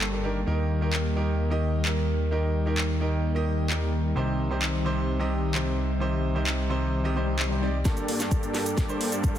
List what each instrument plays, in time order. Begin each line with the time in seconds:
Already playing: analog synth bass G1, analog synth pad G3 A#3 A4
0.01 clap
0.12 grand piano G2 A#3 D4 G4 A4
0.23 grand piano D#3 A#3 D4 G4 A#4
0.46 analog synth bass D#2, grand piano D#3 A#3 D#4 G4 A#4, analog synth pad D#3 G3
0.81 grand piano D#3 A#3 D#4 G4 A#4
0.93 clap
1.16 grand piano D#3 A#3 D#4 G4 A#4
1.50 grand piano D#3 A#3 D#4 G4 D#5
1.85 grand piano D#3 A#3 D#4 G4 A#4, clap
2.31 grand piano D#3 A#3 D#4 G4 A#4
2.66 grand piano D#3 A#3 D#4 G4 A#4
2.78 clap
3.00 grand piano D#3 A#3 D#4 G4 A#4
3.35 grand piano D#3 A#3 D#4 G4 D#5
3.69 grand piano D#3 A#3 D#4 G4 A#4, clap
4.16 analog synth bass C2, grand piano C3 C4 D#4 G4 C5, analog synth pad C4
4.50 grand piano C3 C4 D#4 G4 C5
4.62 clap
4.85 grand piano C3 C4 D#4 G4 C5
5.19 grand piano C3 C4 D#4 G4 D#5
5.54 grand piano C3 C4 D#4 G4 C5, clap
6.00 grand piano C3 C4 D#4 G4 C5
6.35 grand piano C3 C4 D#4 G4 C5
6.47 clap
6.69 grand piano C3 C4 D#4 G4 C5
6.93 swell
7.04 grand piano C3 C4 D#4 G4 D#5
7.15 grand piano C3 C4 D#4 G4 C5
7.39 clap
7.50 grand piano C3 C4 D#4 G4 C5
7.62 grand piano C4 D#4 G4 D5
7.85 grand piano G2 A#3 D4 G4 A4, analog synth pad G2 G3 A#3 D4 A4, supersaw synth A#3 D4 G4 A4 D5, kick, snare, closed hi-hat, riser, cabasa
7.97 closed hi-hat, cabasa
8.08 supersaw synth A#3 D4 G4 A4 D5, open hi-hat
8.19 grand piano G2 A#3 D4 G4 A4, snare, closed hi-hat, cabasa
8.31 kick, closed hi-hat, cabasa
8.43 closed hi-hat, cabasa
8.54 grand piano G2 A#3 D4 G4 A4, snare, open hi-hat
8.66 closed hi-hat, cabasa
8.78 kick, snare, closed hi-hat, cabasa
8.89 grand piano G2 A#3 D4 G4 C5, cabasa
9.01 open hi-hat
9.12 supersaw synth A#3 D4 G4 A4 D5, closed hi-hat, cabasa
9.23 grand piano G2 A#3 D4 G4 A4, supersaw synth D4, kick, closed hi-hat, cabasa
9.35 cabasa